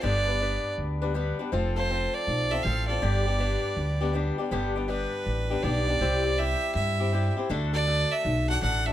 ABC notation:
X:1
M:4/4
L:1/8
Q:"Swing" 1/4=161
K:Gmix
V:1 name="Fiddle"
d4 z4 | z c2 d2 e f d- | d6 z2 | z2 B4 d2- |
d2 e2 e3 z | z d2 e2 ^f f e |]
V:2 name="Steel-string acoustic guitar"
[G,,D,G,B,DB] [G,B,DB] [G,B,DB]3 [G,B,DB] [G,B,DB] [G,B,DB] | [F,CFA] [CFA] [F,CFA]3 [CFA] [F,CFA] [CFA] | [G,,D,G,B,DG] [G,B,DG] [G,B,DG]3 [G,B,DG] [G,B,DG] [G,B,DG] | [G,,D,G,B,DG] [G,B,DG] [G,B,DG]3 [G,B,DG] [G,B,DG] [G,B,DG] |
[C,G,CEG] [CEG] [G,CEG]3 [CEG] [G,CEG] [CEG] | [D,A,D^FA] [DFA] [A,DFA]3 [DFA] [A,DFA] [DFA] |]
V:3 name="Upright bass" clef=bass
G,,,4 D,,4 | F,,,4 B,,,2 A,,,2 | G,,,4 D,,4 | G,,,4 A,,,2 B,,,2 |
C,,4 G,,4 | D,,4 B,,,2 A,,,2 |]